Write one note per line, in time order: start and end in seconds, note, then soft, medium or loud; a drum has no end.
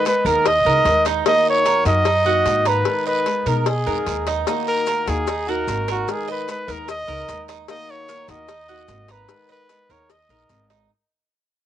0.00 0.25 D#5 medium
0.05 0.25 G#3 medium
0.05 0.25 B3 medium
0.05 0.25 D#4 medium
0.05 0.24 A#4 medium
0.05 0.29 B4 loud
0.05 cowbell medium
0.05 short guiro medium
0.25 0.63 D#2 loud
0.25 0.45 G#3 medium
0.25 0.45 B3 medium
0.25 0.45 D#4 medium
0.25 0.45 A#4 medium
0.25 0.49 A#4 loud
0.25 short guiro medium
0.46 0.65 D#5 medium
0.46 1.07 D#5 loud
0.46 muted steel-string acoustic guitar stroke medium
0.46 cowbell loud
0.46 long guiro medium
0.65 0.84 C#2 medium
0.65 0.85 G#3 medium
0.65 0.86 B3 medium
0.65 0.86 D#4 medium
0.65 1.05 A#4 medium
0.65 0.85 A#4 medium
0.85 1.21 D#2 medium
0.85 1.25 G#3 medium
0.85 1.26 B3 medium
0.85 1.26 D#4 medium
0.85 1.27 A#4 medium
0.85 cowbell medium
0.85 short guiro medium
1.05 1.25 D#4 medium
1.05 cowbell medium
1.05 short guiro medium
1.26 1.64 D#3 medium
1.26 1.65 A#3 medium
1.26 1.65 D#4 medium
1.26 1.66 D#4 medium
1.26 1.66 F#4 medium
1.26 1.46 D#5 loud
1.26 cowbell loud
1.26 long guiro medium
1.49 1.85 C#5 loud
1.65 1.85 D#3 medium
1.65 1.86 A#3 medium
1.65 1.85 D#4 medium
1.65 1.84 F#4 medium
1.65 2.05 A#4 medium
1.65 cowbell medium
1.65 short guiro medium
1.85 2.42 F#2 loud
1.85 2.05 A#3 medium
1.85 2.05 D#4 medium
1.85 2.05 F#4 medium
1.85 2.69 D#5 loud
1.85 cowbell medium
1.85 short guiro medium
2.06 2.26 D#4 medium
2.06 muted steel-string acoustic guitar stroke medium
2.06 cowbell loud
2.06 long guiro medium
2.25 2.45 A#3 medium
2.25 2.46 D#4 medium
2.25 2.45 F#4 medium
2.25 2.65 F#4 medium
2.45 2.81 G#2 medium
2.45 2.85 D#3 medium
2.45 2.86 A#3 medium
2.45 2.86 D#4 medium
2.45 2.86 F#4 medium
2.45 cowbell medium
2.45 short guiro medium
2.66 3.07 B4 loud
2.66 3.05 A#5 medium
2.66 cowbell medium
2.66 short guiro medium
2.85 3.26 D#3 medium
2.85 3.25 G#3 medium
2.85 3.26 B3 medium
2.85 3.26 D#4 medium
2.85 3.27 A#4 medium
2.85 cowbell loud
2.85 long guiro medium
3.07 3.50 B4 loud
3.07 3.46 D#5 medium
3.26 3.46 G#3 medium
3.26 3.46 B3 soft
3.26 3.46 D#4 medium
3.26 3.45 A#4 medium
3.26 cowbell medium
3.26 short guiro medium
3.46 3.84 B2 loud
3.46 3.66 G#3 medium
3.46 3.66 B3 medium
3.46 3.66 D#4 medium
3.46 3.66 A#4 medium
3.46 3.70 A#4 medium
3.46 short guiro medium
3.66 4.28 G#4 medium
3.66 3.86 D#5 medium
3.66 muted steel-string acoustic guitar stroke medium
3.66 cowbell loud
3.66 long guiro medium
3.86 4.06 F2 medium
3.86 4.05 G#3 medium
3.86 4.06 B3 medium
3.86 4.06 D#4 medium
3.86 4.06 A#4 medium
3.86 4.26 A#4 medium
4.06 4.42 D#2 medium
4.06 4.46 G#3 medium
4.06 4.47 B3 medium
4.06 4.47 D#4 medium
4.06 4.47 A#4 medium
4.06 cowbell medium
4.06 short guiro medium
4.27 4.46 D#4 medium
4.27 cowbell medium
4.27 short guiro medium
4.47 4.85 D#3 medium
4.47 4.86 A#3 medium
4.47 4.87 D#4 medium
4.47 4.88 F#4 medium
4.47 cowbell loud
4.47 long guiro medium
4.47 maracas medium
4.67 5.10 A#4 loud
4.67 maracas soft
4.86 5.06 D#3 medium
4.86 5.07 A#3 medium
4.86 5.05 F#4 medium
4.86 5.27 A#4 medium
4.86 cowbell medium
4.86 short guiro medium
4.86 maracas medium
5.06 5.64 D#2 loud
5.06 5.26 A#3 medium
5.06 5.26 D#4 medium
5.06 5.26 F#4 medium
5.06 5.52 G#4 medium
5.06 cowbell medium
5.06 short guiro medium
5.06 maracas soft
5.27 5.47 D#4 medium
5.27 muted steel-string acoustic guitar stroke medium
5.27 cowbell loud
5.27 long guiro medium
5.27 maracas medium
5.47 5.67 A#3 medium
5.47 5.67 D#4 medium
5.47 5.67 F#4 medium
5.47 5.87 F#4 medium
5.47 5.89 A#4 loud
5.47 maracas soft
5.67 6.03 G#1 medium
5.67 6.06 D#3 medium
5.67 6.07 A#3 medium
5.67 6.07 D#4 medium
5.67 6.08 F#4 medium
5.67 cowbell medium
5.67 short guiro medium
5.67 maracas medium
5.88 6.13 F#4 medium
5.88 6.27 A#4 medium
5.88 cowbell medium
5.88 short guiro medium
5.88 maracas soft
6.07 6.47 D#3 medium
6.07 6.46 G#3 medium
6.07 6.47 B3 medium
6.07 6.48 D#4 medium
6.07 6.48 A#4 medium
6.07 cowbell loud
6.07 long guiro medium
6.07 maracas medium
6.12 6.30 G#4 loud
6.28 6.49 B4 loud
6.28 6.67 D#5 medium
6.28 maracas soft
6.47 6.67 G#3 medium
6.47 6.67 B3 medium
6.47 6.67 D#4 medium
6.47 6.66 A#4 medium
6.47 cowbell medium
6.47 short guiro medium
6.47 maracas medium
6.51 6.73 B4 loud
6.67 7.05 D#2 loud
6.67 6.87 G#3 medium
6.67 6.87 B3 medium
6.67 6.87 D#4 medium
6.67 6.87 A#4 medium
6.67 6.88 A#4 medium
6.67 short guiro medium
6.67 maracas soft
6.72 6.90 A#4 loud
6.87 7.08 D#5 medium
6.87 7.46 D#5 loud
6.87 muted steel-string acoustic guitar stroke medium
6.87 cowbell loud
6.87 long guiro medium
6.87 maracas medium
7.07 7.27 C#2 medium
7.07 7.27 G#3 medium
7.07 7.27 B3 medium
7.07 7.28 D#4 medium
7.07 7.27 A#4 medium
7.07 7.47 A#4 medium
7.07 maracas soft
7.28 7.64 D#2 medium
7.28 7.68 G#3 medium
7.28 7.68 B3 medium
7.28 7.68 D#4 medium
7.28 7.69 A#4 medium
7.28 cowbell medium
7.28 short guiro medium
7.28 maracas medium
7.48 7.68 D#4 medium
7.48 cowbell medium
7.48 short guiro medium
7.48 maracas soft
7.68 8.07 D#3 medium
7.68 8.08 A#3 medium
7.68 8.08 D#4 medium
7.68 8.09 F#4 medium
7.68 7.92 D#5 loud
7.68 cowbell loud
7.68 long guiro medium
7.68 maracas medium
7.89 8.30 C#5 loud
7.89 maracas soft
8.08 8.28 D#3 medium
8.08 8.28 A#3 medium
8.08 8.27 F#4 medium
8.08 8.48 A#4 medium
8.08 cowbell medium
8.08 short guiro medium
8.08 maracas medium
8.28 8.85 D#2 loud
8.28 8.48 A#3 medium
8.28 8.48 D#4 medium
8.28 8.48 F#4 medium
8.28 9.13 D#5 loud
8.28 cowbell medium
8.28 short guiro medium
8.28 maracas soft
8.49 8.69 D#4 medium
8.49 muted steel-string acoustic guitar stroke medium
8.49 cowbell loud
8.49 long guiro medium
8.49 maracas medium
8.68 8.88 A#3 medium
8.68 8.89 D#4 medium
8.68 8.88 F#4 medium
8.68 9.08 F#4 medium
8.68 maracas soft
8.88 9.24 G#1 loud
8.88 9.27 D#3 medium
8.88 9.29 A#3 medium
8.88 9.29 D#4 medium
8.88 9.29 F#4 medium
8.88 cowbell medium
8.88 short guiro medium
8.88 maracas medium
9.08 9.51 B4 loud
9.08 9.48 A#5 medium
9.08 cowbell medium
9.08 short guiro medium
9.08 maracas soft
9.28 9.68 D#3 medium
9.28 9.68 G#3 medium
9.28 9.69 B3 medium
9.28 9.69 D#4 medium
9.28 9.70 A#4 medium
9.28 cowbell loud
9.28 long guiro medium
9.28 maracas medium
9.49 9.93 B4 loud
9.49 9.88 D#5 medium
9.49 maracas soft
9.69 9.89 G#3 medium
9.69 9.89 B3 medium
9.69 9.89 D#4 medium
9.69 9.88 A#4 medium
9.69 cowbell medium
9.69 short guiro medium
9.69 maracas medium
9.89 10.27 D#2 loud
9.89 10.09 G#3 medium
9.89 10.09 B3 medium
9.89 10.09 D#4 medium
9.89 10.09 A#4 medium
9.89 10.12 C#5 medium
9.89 short guiro medium
9.89 maracas soft
10.10 10.29 D#5 medium
10.10 10.71 D#5 loud
10.10 muted steel-string acoustic guitar stroke medium
10.10 cowbell loud
10.10 long guiro medium
10.10 maracas medium
10.29 10.48 A#1 medium
10.29 10.49 G#3 medium
10.29 10.50 B3 medium
10.29 10.50 D#4 medium
10.29 10.69 A#4 medium
10.29 10.49 A#4 medium
10.29 maracas soft
10.49 10.85 G#1 medium
10.49 10.89 G#3 medium
10.49 10.90 B3 medium
10.49 10.90 D#4 medium
10.49 10.91 A#4 medium
10.49 cowbell medium
10.49 short guiro medium
10.49 maracas medium
10.70 10.89 D#4 medium
10.70 cowbell medium
10.70 short guiro medium
10.70 maracas soft